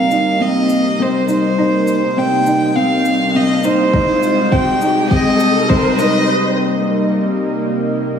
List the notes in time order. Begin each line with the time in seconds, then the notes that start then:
Already playing: C2 C3 G3 A#3 D#4 F5, riser
0.11 D#4, shaker
0.40 C4 D#5
0.70 shaker
0.99 C4 C5
1.29 D#4 C5, shaker
1.58 D#4
1.88 shaker
2.17 C4 G5
2.47 D#4, shaker
2.76 C4 F5
3.05 shaker
3.35 C4 D#5
3.64 D#4 C5, shaker
3.94 C2 G3 G#3 D#4, kick
4.23 shaker
4.52 C4 G5, kick
4.82 D#4, shaker
5.11 C4 D#5, kick
5.40 shaker
5.69 C4 C5, kick
5.99 D#4 D#5, shaker
6.30 A#3